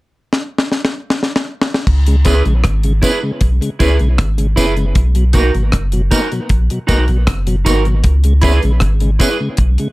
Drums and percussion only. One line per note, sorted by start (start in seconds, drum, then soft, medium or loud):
0.33 snare medium
0.58 snare medium
0.72 snare medium
0.85 snare medium
1.10 snare medium
1.23 snare medium
1.36 snare medium
1.62 snare loud
1.74 snare medium
1.87 kick loud
1.87 crash medium
2.07 closed hi-hat medium
2.25 kick loud
2.25 closed hi-hat medium
2.25 tambourine soft
2.45 closed hi-hat soft
2.64 kick loud
2.64 cross-stick loud
2.64 closed hi-hat medium
2.83 closed hi-hat medium
3.03 kick medium
3.03 closed hi-hat medium
3.03 tambourine medium
3.41 kick loud
3.41 closed hi-hat medium
3.62 closed hi-hat medium
3.80 kick loud
3.80 closed hi-hat medium
3.80 tambourine medium
3.99 closed hi-hat soft
4.18 kick loud
4.18 cross-stick loud
4.18 closed hi-hat medium
4.38 closed hi-hat medium
4.57 kick medium
4.57 closed hi-hat medium
4.57 tambourine medium
4.77 closed hi-hat soft
4.95 kick loud
4.95 closed hi-hat medium
5.15 closed hi-hat medium
5.33 kick loud
5.33 closed hi-hat medium
5.33 tambourine medium
5.54 closed hi-hat soft
5.72 kick loud
5.72 cross-stick loud
5.72 closed hi-hat medium
5.92 closed hi-hat soft
6.11 kick loud
6.11 closed hi-hat medium
6.11 tambourine medium
6.32 closed hi-hat soft
6.49 kick loud
6.49 closed hi-hat medium
6.70 closed hi-hat soft
6.88 kick loud
6.88 closed hi-hat medium
6.88 tambourine medium
7.08 closed hi-hat soft
7.27 kick loud
7.27 cross-stick loud
7.27 closed hi-hat medium
7.47 closed hi-hat medium
7.66 kick medium
7.66 closed hi-hat medium
7.66 tambourine medium
7.85 closed hi-hat soft
8.04 kick loud
8.04 closed hi-hat loud
8.24 closed hi-hat medium
8.41 kick loud
8.41 closed hi-hat medium
8.41 tambourine medium
8.63 closed hi-hat soft
8.80 kick loud
8.80 cross-stick loud
8.80 closed hi-hat medium
9.00 closed hi-hat soft
9.20 kick medium
9.20 closed hi-hat medium
9.20 tambourine medium
9.57 kick loud
9.57 closed hi-hat medium
9.78 closed hi-hat medium